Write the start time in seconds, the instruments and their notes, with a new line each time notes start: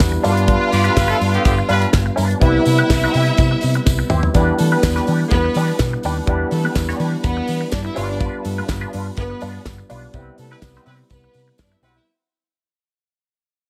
0.00 picked electric bass E2, tine electric piano G3 B3 D4 E4 B4, kick, snare, clap, closed hi-hat, tambourine
0.12 muted clean electric guitar stroke
0.23 picked electric bass G2, tine electric piano G3 B3 D4 F4 A#4, clean electric guitar D4 F4 D5, string section F4 F5, open hi-hat, tambourine
0.32 tine electric piano B4
0.36 muted clean electric guitar stroke, closed hi-hat
0.47 clean electric guitar D4 F4 B4, kick, closed hi-hat
0.72 picked electric bass G2, horn section B3 G4 D5, muted clean electric guitar stroke, open hi-hat, tambourine
0.84 horn section G3 F4 B4, clean electric guitar D4 F4 B4, closed hi-hat
0.96 picked electric bass G1, horn section G3 F4 B4, muted clean electric guitar stroke, kick, snare, clap, closed hi-hat, tambourine
1.08 horn section A3 F4 A4, clean electric guitar D4 F4 B4
1.19 picked electric bass G2, clean electric guitar D4 F4 B4, open hi-hat, tambourine
1.33 horn section D3 B3 G4, muted clean electric guitar stroke, closed hi-hat
1.45 picked electric bass G1, horn section D3 B3 G4, muted clean electric guitar stroke, kick, closed hi-hat, tambourine
1.58 muted clean electric guitar stroke
1.69 picked electric bass G2, horn section G3 F4 B4, clean electric guitar D4 F4 B4, open hi-hat, tambourine
1.81 muted clean electric guitar stroke, closed hi-hat
1.92 picked electric bass G1, muted clean electric guitar stroke, kick, snare, clap, closed hi-hat, tambourine
2.06 muted clean electric guitar stroke
2.16 picked electric bass G2, clean electric guitar D4 F4 B4, open hi-hat, tambourine
2.29 muted clean electric guitar stroke, closed hi-hat
2.40 picked electric bass C2, tine electric piano G3 B3 C4 E4 B4, clean electric guitar E4 G4 B4, string section E4 E5, kick, closed hi-hat
2.66 picked electric bass C3, muted clean electric guitar stroke, open hi-hat, tambourine
2.78 clean electric guitar E4 G4 B4, closed hi-hat
2.90 picked electric bass C2, muted clean electric guitar stroke, kick, snare, clap, closed hi-hat, tambourine
3.04 clean electric guitar E4 G4 C5
3.14 picked electric bass C3, clean electric guitar E4 G4 B4, open hi-hat, tambourine
3.27 muted clean electric guitar stroke, closed hi-hat
3.37 picked electric bass C3, muted clean electric guitar stroke, kick, closed hi-hat, tambourine
3.51 muted clean electric guitar stroke
3.61 picked electric bass C3, open hi-hat, tambourine
3.74 muted clean electric guitar stroke, closed hi-hat
3.86 picked electric bass C2, kick, snare, tambourine
3.99 muted clean electric guitar stroke
4.10 picked electric bass D#2, clean electric guitar E4 G4 C5, mid tom, tambourine
4.23 muted clean electric guitar stroke, floor tom
4.33 picked electric bass E2, tine electric piano G3 B3 D4 E4 B4, clean electric guitar D4 G4 B4, kick, closed hi-hat, tambourine
4.58 picked electric bass E3, string section A3 A4, muted clean electric guitar stroke, open hi-hat, tambourine
4.71 string section B3 B4, clean electric guitar D4 G4 B4
4.83 picked electric bass E2, muted clean electric guitar stroke, kick, snare, clap, closed hi-hat, tambourine
4.96 clean electric guitar D4 G4 B4, snare
5.07 picked electric bass E3, clean electric guitar D4 G4 B4, open hi-hat, tambourine
5.21 muted clean electric guitar stroke
5.31 picked electric bass E2, string section B3 B4, muted clean electric guitar stroke, kick, closed hi-hat, tambourine
5.44 muted clean electric guitar stroke
5.54 picked electric bass E3, clean electric guitar D4 G4 B4, open hi-hat, tambourine
5.70 muted clean electric guitar stroke
5.79 picked electric bass B2, muted clean electric guitar stroke, kick, snare, clap, closed hi-hat, tambourine
5.93 muted clean electric guitar stroke
6.03 picked electric bass D#2, clean electric guitar D4 G4 B4, open hi-hat, tambourine
6.18 muted clean electric guitar stroke
6.26 picked electric bass E2, tine electric piano G3 B3 D4 E4 B4, clean electric guitar D4 G4, kick, closed hi-hat
6.30 clean electric guitar B4
6.51 picked electric bass E3, string section A3 A4, muted clean electric guitar stroke, open hi-hat, tambourine
6.64 string section B3 B4, clean electric guitar D4 G4 B4
6.75 picked electric bass E2, kick, snare, clap, closed hi-hat, tambourine
6.89 clean electric guitar D4 G4 D5, snare
6.99 picked electric bass E3, clean electric guitar D4 G4 B4, open hi-hat, tambourine
7.13 muted clean electric guitar stroke
7.24 picked electric bass E2, string section B3 B4, muted clean electric guitar stroke, kick, closed hi-hat, tambourine
7.37 muted clean electric guitar stroke
7.48 picked electric bass E3, open hi-hat, tambourine
7.61 muted clean electric guitar stroke
7.71 picked electric bass G2, string section D4 D5, kick, snare, clap, closed hi-hat, tambourine
7.84 string section E4 E5, muted clean electric guitar stroke
7.94 picked electric bass G1, tine electric piano G3 B3 D4 F4 B4, clean electric guitar D4 F4 D5, string section F4 F5, open hi-hat, tambourine
8.09 string section D4 D5, muted clean electric guitar stroke
8.19 clean electric guitar D4 F4 B4, kick, closed hi-hat, tambourine
8.44 picked electric bass G2, string section A3 A4, muted clean electric guitar stroke, open hi-hat, tambourine
8.58 string section B3 B4, clean electric guitar D4 F4 B4
8.68 picked electric bass G1, muted clean electric guitar stroke, kick, snare, clap, closed hi-hat, tambourine
8.81 clean electric guitar D4 F4 B4
8.93 picked electric bass G2, clean electric guitar D4 F4 B4, open hi-hat
9.07 muted clean electric guitar stroke
9.17 picked electric bass G1, string section B3 B4, muted clean electric guitar stroke, kick, closed hi-hat, tambourine
9.30 muted clean electric guitar stroke
9.41 picked electric bass G2, clean electric guitar D4 F4 B4, open hi-hat, tambourine
9.54 muted clean electric guitar stroke
9.65 picked electric bass G1, muted clean electric guitar stroke, kick, snare, clap, closed hi-hat, tambourine
9.78 muted clean electric guitar stroke
9.89 picked electric bass B1, tine electric piano G3 B3 D4 F4 D5, clean electric guitar D4 F4 B4, open hi-hat, tambourine
10.04 muted clean electric guitar stroke
10.14 picked electric bass C2, tine electric piano G3 B3 C4 E4 B4, clean electric guitar C4 E4 B4, kick, closed hi-hat, tambourine
10.38 picked electric bass C3, string section A3 A4, muted clean electric guitar stroke, open hi-hat, tambourine
10.51 horn section G3 E4 B4, string section B3 B4, clean electric guitar C4 E4 B4
10.62 picked electric bass C2, muted clean electric guitar stroke, kick, snare, clap, tambourine
10.75 clean electric guitar C4 E4 C5, snare
10.86 picked electric bass C3, horn section G3 E4 B4, clean electric guitar C4 E4 B4, open hi-hat, tambourine
11.00 muted clean electric guitar stroke
11.10 picked electric bass C2, string section B3 B4, muted clean electric guitar stroke, kick, closed hi-hat, tambourine
11.24 muted clean electric guitar stroke
11.34 picked electric bass C3, open hi-hat, tambourine
11.48 muted clean electric guitar stroke
11.58 picked electric bass G2, string section D4 D5, kick, snare, clap, closed hi-hat, tambourine
11.71 string section E4 E5, muted clean electric guitar stroke
11.82 picked electric bass B1, horn section G3 E4 B4, clean electric guitar C4 E4 C5, string section F#4 F#5, open hi-hat, tambourine
11.96 string section E4 E5, muted clean electric guitar stroke